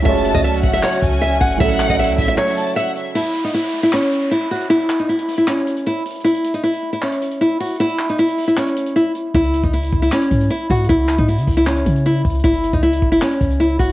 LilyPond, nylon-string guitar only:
\new Staff \with { instrumentName = "Nylon-string guitar" } { \time 4/4 \key cis \minor \tempo 4 = 155 e''8. dis''16 e''8. e''16 cis''4 e''8 fis''8 | e''8. dis''16 e''8. e''16 cis''4 e''8 r8 | e'8. dis'16 e'8. e'16 cis'4 e'8 fis'8 | e'8. dis'16 e'8. e'16 cis'4 e'8 r8 |
e'8. dis'16 e'8. e'16 cis'4 e'8 fis'8 | e'8. dis'16 e'8. e'16 cis'4 e'8 r8 | e'8. dis'16 e'8. e'16 cis'4 e'8 fis'8 | e'8. dis'16 e'8. e'16 cis'4 e'8 r8 |
e'8. dis'16 e'8. e'16 cis'4 e'8 fis'8 | }